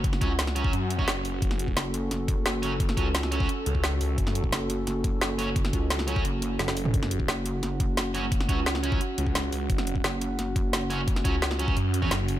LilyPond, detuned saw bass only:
\new Staff \with { instrumentName = "Detuned saw bass" } { \clef bass \time 4/4 \key fis \minor \tempo 4 = 174 r2 fis,4 fis,,4 | fis,,4 r2. | r2 r8 cis,4 cis,8 | fis,,4 r2. |
r2. fis,,4 | fis,,4 r2. | r2 r8 cis,4 cis,8 | fis,,4 r2. |
r2 fis,4 fis,,4 | }